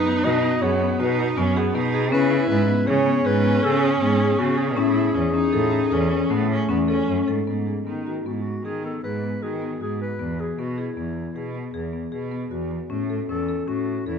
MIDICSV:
0, 0, Header, 1, 5, 480
1, 0, Start_track
1, 0, Tempo, 378072
1, 2703, Time_signature, 7, 2, 24, 8
1, 7029, Tempo, 387847
1, 17734, End_track
2, 0, Start_track
2, 0, Title_t, "Clarinet"
2, 0, Program_c, 0, 71
2, 0, Note_on_c, 0, 71, 79
2, 312, Note_on_c, 0, 75, 94
2, 331, Note_off_c, 0, 71, 0
2, 786, Note_on_c, 0, 73, 78
2, 805, Note_off_c, 0, 75, 0
2, 1211, Note_off_c, 0, 73, 0
2, 1211, Note_on_c, 0, 73, 45
2, 1268, Note_on_c, 0, 71, 66
2, 1287, Note_off_c, 0, 73, 0
2, 1507, Note_off_c, 0, 71, 0
2, 2704, Note_on_c, 0, 71, 101
2, 3148, Note_off_c, 0, 71, 0
2, 3161, Note_on_c, 0, 71, 93
2, 3646, Note_on_c, 0, 73, 93
2, 3665, Note_off_c, 0, 71, 0
2, 4144, Note_on_c, 0, 71, 97
2, 4163, Note_off_c, 0, 73, 0
2, 4615, Note_on_c, 0, 69, 89
2, 4634, Note_off_c, 0, 71, 0
2, 4855, Note_on_c, 0, 68, 91
2, 4874, Note_off_c, 0, 69, 0
2, 5579, Note_on_c, 0, 66, 83
2, 5598, Note_off_c, 0, 68, 0
2, 5817, Note_on_c, 0, 68, 82
2, 5836, Note_off_c, 0, 66, 0
2, 8941, Note_off_c, 0, 68, 0
2, 9925, Note_on_c, 0, 63, 52
2, 10408, Note_on_c, 0, 66, 50
2, 10427, Note_off_c, 0, 63, 0
2, 10485, Note_on_c, 0, 64, 41
2, 10504, Note_off_c, 0, 66, 0
2, 10587, Note_on_c, 0, 66, 52
2, 10606, Note_off_c, 0, 64, 0
2, 10885, Note_on_c, 0, 68, 58
2, 10903, Note_off_c, 0, 66, 0
2, 11124, Note_off_c, 0, 68, 0
2, 11129, Note_on_c, 0, 69, 59
2, 11351, Note_off_c, 0, 69, 0
2, 11361, Note_on_c, 0, 71, 64
2, 11842, Note_on_c, 0, 68, 56
2, 11860, Note_off_c, 0, 71, 0
2, 12323, Note_off_c, 0, 68, 0
2, 12336, Note_on_c, 0, 68, 59
2, 12553, Note_off_c, 0, 68, 0
2, 12578, Note_on_c, 0, 71, 66
2, 13050, Note_on_c, 0, 68, 56
2, 13068, Note_off_c, 0, 71, 0
2, 13295, Note_on_c, 0, 66, 57
2, 13313, Note_off_c, 0, 68, 0
2, 13540, Note_on_c, 0, 64, 51
2, 13559, Note_off_c, 0, 66, 0
2, 14485, Note_off_c, 0, 64, 0
2, 16636, Note_on_c, 0, 69, 69
2, 17107, Note_on_c, 0, 66, 62
2, 17125, Note_off_c, 0, 69, 0
2, 17576, Note_off_c, 0, 66, 0
2, 17584, Note_on_c, 0, 64, 68
2, 17734, Note_off_c, 0, 64, 0
2, 17734, End_track
3, 0, Start_track
3, 0, Title_t, "Marimba"
3, 0, Program_c, 1, 12
3, 72, Note_on_c, 1, 59, 71
3, 287, Note_off_c, 1, 59, 0
3, 309, Note_on_c, 1, 66, 75
3, 525, Note_off_c, 1, 66, 0
3, 549, Note_on_c, 1, 59, 71
3, 764, Note_off_c, 1, 59, 0
3, 791, Note_on_c, 1, 68, 67
3, 1004, Note_off_c, 1, 68, 0
3, 1030, Note_on_c, 1, 59, 70
3, 1244, Note_off_c, 1, 59, 0
3, 1269, Note_on_c, 1, 66, 69
3, 1699, Note_off_c, 1, 66, 0
3, 1745, Note_on_c, 1, 59, 74
3, 1961, Note_off_c, 1, 59, 0
3, 1986, Note_on_c, 1, 68, 78
3, 2200, Note_off_c, 1, 68, 0
3, 2223, Note_on_c, 1, 59, 70
3, 2438, Note_off_c, 1, 59, 0
3, 2462, Note_on_c, 1, 68, 70
3, 2677, Note_off_c, 1, 68, 0
3, 2694, Note_on_c, 1, 61, 89
3, 2912, Note_off_c, 1, 61, 0
3, 2929, Note_on_c, 1, 64, 71
3, 3364, Note_off_c, 1, 64, 0
3, 3408, Note_on_c, 1, 59, 70
3, 3628, Note_off_c, 1, 59, 0
3, 3647, Note_on_c, 1, 68, 70
3, 3868, Note_off_c, 1, 68, 0
3, 3884, Note_on_c, 1, 59, 76
3, 4107, Note_off_c, 1, 59, 0
3, 4124, Note_on_c, 1, 68, 70
3, 4347, Note_off_c, 1, 68, 0
3, 4363, Note_on_c, 1, 59, 74
3, 4586, Note_off_c, 1, 59, 0
3, 4607, Note_on_c, 1, 68, 80
3, 5043, Note_off_c, 1, 68, 0
3, 5092, Note_on_c, 1, 59, 78
3, 5311, Note_off_c, 1, 59, 0
3, 5329, Note_on_c, 1, 68, 75
3, 5549, Note_off_c, 1, 68, 0
3, 5567, Note_on_c, 1, 59, 69
3, 5788, Note_off_c, 1, 59, 0
3, 5810, Note_on_c, 1, 68, 67
3, 6031, Note_off_c, 1, 68, 0
3, 6050, Note_on_c, 1, 61, 88
3, 6271, Note_off_c, 1, 61, 0
3, 6294, Note_on_c, 1, 64, 66
3, 6731, Note_off_c, 1, 64, 0
3, 6777, Note_on_c, 1, 61, 64
3, 6999, Note_off_c, 1, 61, 0
3, 7017, Note_on_c, 1, 69, 72
3, 7236, Note_off_c, 1, 69, 0
3, 7257, Note_on_c, 1, 61, 64
3, 7474, Note_off_c, 1, 61, 0
3, 7498, Note_on_c, 1, 69, 65
3, 7713, Note_off_c, 1, 69, 0
3, 7737, Note_on_c, 1, 61, 62
3, 7952, Note_off_c, 1, 61, 0
3, 7976, Note_on_c, 1, 57, 72
3, 8407, Note_off_c, 1, 57, 0
3, 8453, Note_on_c, 1, 61, 74
3, 8671, Note_off_c, 1, 61, 0
3, 8694, Note_on_c, 1, 69, 66
3, 8914, Note_off_c, 1, 69, 0
3, 8939, Note_on_c, 1, 61, 61
3, 9160, Note_off_c, 1, 61, 0
3, 9182, Note_on_c, 1, 69, 61
3, 9403, Note_off_c, 1, 69, 0
3, 9427, Note_on_c, 1, 59, 53
3, 9647, Note_off_c, 1, 59, 0
3, 9670, Note_on_c, 1, 68, 42
3, 9889, Note_off_c, 1, 68, 0
3, 9914, Note_on_c, 1, 59, 46
3, 10132, Note_off_c, 1, 59, 0
3, 10157, Note_on_c, 1, 66, 49
3, 10375, Note_off_c, 1, 66, 0
3, 10401, Note_on_c, 1, 59, 49
3, 10834, Note_off_c, 1, 59, 0
3, 10882, Note_on_c, 1, 68, 45
3, 11098, Note_off_c, 1, 68, 0
3, 11117, Note_on_c, 1, 59, 46
3, 11336, Note_off_c, 1, 59, 0
3, 11368, Note_on_c, 1, 68, 47
3, 11583, Note_off_c, 1, 68, 0
3, 11608, Note_on_c, 1, 59, 43
3, 11823, Note_off_c, 1, 59, 0
3, 11840, Note_on_c, 1, 66, 48
3, 12058, Note_off_c, 1, 66, 0
3, 12079, Note_on_c, 1, 59, 49
3, 12296, Note_off_c, 1, 59, 0
3, 12316, Note_on_c, 1, 66, 45
3, 12748, Note_off_c, 1, 66, 0
3, 12794, Note_on_c, 1, 59, 57
3, 13011, Note_off_c, 1, 59, 0
3, 13036, Note_on_c, 1, 68, 48
3, 13252, Note_off_c, 1, 68, 0
3, 13276, Note_on_c, 1, 59, 54
3, 13493, Note_off_c, 1, 59, 0
3, 13516, Note_on_c, 1, 68, 48
3, 13732, Note_off_c, 1, 68, 0
3, 13754, Note_on_c, 1, 59, 54
3, 14185, Note_off_c, 1, 59, 0
3, 14235, Note_on_c, 1, 68, 49
3, 14450, Note_off_c, 1, 68, 0
3, 14467, Note_on_c, 1, 59, 48
3, 14685, Note_off_c, 1, 59, 0
3, 14705, Note_on_c, 1, 68, 55
3, 14923, Note_off_c, 1, 68, 0
3, 14941, Note_on_c, 1, 59, 47
3, 15160, Note_off_c, 1, 59, 0
3, 15178, Note_on_c, 1, 68, 55
3, 15399, Note_off_c, 1, 68, 0
3, 15419, Note_on_c, 1, 59, 53
3, 15639, Note_off_c, 1, 59, 0
3, 15660, Note_on_c, 1, 66, 51
3, 16093, Note_off_c, 1, 66, 0
3, 16140, Note_on_c, 1, 61, 64
3, 16359, Note_off_c, 1, 61, 0
3, 16386, Note_on_c, 1, 69, 52
3, 16602, Note_off_c, 1, 69, 0
3, 16627, Note_on_c, 1, 61, 51
3, 16843, Note_off_c, 1, 61, 0
3, 16866, Note_on_c, 1, 69, 54
3, 17082, Note_off_c, 1, 69, 0
3, 17103, Note_on_c, 1, 61, 61
3, 17536, Note_off_c, 1, 61, 0
3, 17583, Note_on_c, 1, 69, 49
3, 17734, Note_off_c, 1, 69, 0
3, 17734, End_track
4, 0, Start_track
4, 0, Title_t, "Viola"
4, 0, Program_c, 2, 41
4, 0, Note_on_c, 2, 63, 94
4, 787, Note_on_c, 2, 59, 90
4, 806, Note_off_c, 2, 63, 0
4, 1264, Note_on_c, 2, 63, 94
4, 1283, Note_off_c, 2, 59, 0
4, 1737, Note_on_c, 2, 61, 93
4, 1756, Note_off_c, 2, 63, 0
4, 1991, Note_on_c, 2, 59, 86
4, 2010, Note_off_c, 2, 61, 0
4, 2218, Note_on_c, 2, 63, 92
4, 2237, Note_off_c, 2, 59, 0
4, 2692, Note_off_c, 2, 63, 0
4, 2700, Note_on_c, 2, 64, 92
4, 3607, Note_off_c, 2, 64, 0
4, 3653, Note_on_c, 2, 61, 98
4, 6051, Note_on_c, 2, 64, 85
4, 6070, Note_off_c, 2, 61, 0
4, 6533, Note_on_c, 2, 61, 81
4, 6553, Note_off_c, 2, 64, 0
4, 6774, Note_off_c, 2, 61, 0
4, 6781, Note_on_c, 2, 63, 84
4, 7504, Note_on_c, 2, 61, 83
4, 7523, Note_off_c, 2, 63, 0
4, 7978, Note_on_c, 2, 59, 77
4, 7997, Note_off_c, 2, 61, 0
4, 8218, Note_off_c, 2, 59, 0
4, 8227, Note_on_c, 2, 61, 81
4, 8446, Note_off_c, 2, 61, 0
4, 8460, Note_on_c, 2, 59, 71
4, 8568, Note_off_c, 2, 59, 0
4, 8697, Note_on_c, 2, 61, 76
4, 9151, Note_off_c, 2, 61, 0
4, 17734, End_track
5, 0, Start_track
5, 0, Title_t, "Cello"
5, 0, Program_c, 3, 42
5, 303, Note_on_c, 3, 47, 87
5, 741, Note_off_c, 3, 47, 0
5, 783, Note_on_c, 3, 42, 81
5, 1219, Note_off_c, 3, 42, 0
5, 1264, Note_on_c, 3, 47, 94
5, 1701, Note_off_c, 3, 47, 0
5, 1745, Note_on_c, 3, 42, 83
5, 2180, Note_off_c, 3, 42, 0
5, 2227, Note_on_c, 3, 47, 89
5, 2696, Note_on_c, 3, 49, 98
5, 2715, Note_off_c, 3, 47, 0
5, 3133, Note_off_c, 3, 49, 0
5, 3168, Note_on_c, 3, 44, 91
5, 3391, Note_off_c, 3, 44, 0
5, 3639, Note_on_c, 3, 49, 88
5, 4084, Note_off_c, 3, 49, 0
5, 4123, Note_on_c, 3, 44, 88
5, 4566, Note_off_c, 3, 44, 0
5, 4606, Note_on_c, 3, 49, 91
5, 5048, Note_off_c, 3, 49, 0
5, 5084, Note_on_c, 3, 44, 81
5, 5526, Note_off_c, 3, 44, 0
5, 5568, Note_on_c, 3, 49, 81
5, 6052, Note_on_c, 3, 45, 87
5, 6071, Note_off_c, 3, 49, 0
5, 6494, Note_off_c, 3, 45, 0
5, 6533, Note_on_c, 3, 40, 82
5, 6757, Note_off_c, 3, 40, 0
5, 7021, Note_on_c, 3, 45, 80
5, 7455, Note_off_c, 3, 45, 0
5, 7492, Note_on_c, 3, 40, 82
5, 7928, Note_off_c, 3, 40, 0
5, 7973, Note_on_c, 3, 45, 82
5, 8410, Note_off_c, 3, 45, 0
5, 8459, Note_on_c, 3, 40, 78
5, 8897, Note_off_c, 3, 40, 0
5, 8941, Note_on_c, 3, 42, 64
5, 9161, Note_off_c, 3, 42, 0
5, 9183, Note_on_c, 3, 44, 69
5, 9404, Note_off_c, 3, 44, 0
5, 9422, Note_on_c, 3, 44, 58
5, 9866, Note_off_c, 3, 44, 0
5, 9908, Note_on_c, 3, 51, 47
5, 10351, Note_off_c, 3, 51, 0
5, 10393, Note_on_c, 3, 44, 52
5, 10834, Note_off_c, 3, 44, 0
5, 10875, Note_on_c, 3, 51, 52
5, 11315, Note_off_c, 3, 51, 0
5, 11360, Note_on_c, 3, 44, 55
5, 11799, Note_off_c, 3, 44, 0
5, 11843, Note_on_c, 3, 51, 56
5, 12279, Note_off_c, 3, 51, 0
5, 12311, Note_on_c, 3, 44, 61
5, 12750, Note_off_c, 3, 44, 0
5, 12792, Note_on_c, 3, 40, 61
5, 13230, Note_off_c, 3, 40, 0
5, 13267, Note_on_c, 3, 47, 57
5, 13707, Note_off_c, 3, 47, 0
5, 13749, Note_on_c, 3, 40, 52
5, 14187, Note_off_c, 3, 40, 0
5, 14223, Note_on_c, 3, 47, 58
5, 14662, Note_off_c, 3, 47, 0
5, 14704, Note_on_c, 3, 40, 56
5, 15142, Note_off_c, 3, 40, 0
5, 15185, Note_on_c, 3, 47, 56
5, 15622, Note_off_c, 3, 47, 0
5, 15661, Note_on_c, 3, 40, 66
5, 16099, Note_off_c, 3, 40, 0
5, 16148, Note_on_c, 3, 45, 62
5, 16583, Note_off_c, 3, 45, 0
5, 16627, Note_on_c, 3, 40, 59
5, 17063, Note_off_c, 3, 40, 0
5, 17099, Note_on_c, 3, 45, 59
5, 17538, Note_off_c, 3, 45, 0
5, 17585, Note_on_c, 3, 40, 60
5, 17734, Note_off_c, 3, 40, 0
5, 17734, End_track
0, 0, End_of_file